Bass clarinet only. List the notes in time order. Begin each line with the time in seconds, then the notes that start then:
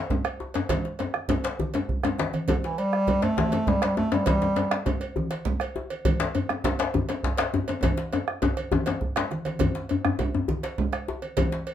2.50 D3
2.64 E3
2.78 G3
3.23 A3
3.67 G3
3.83 G3
3.97 A3
4.13 G3
4.27 G3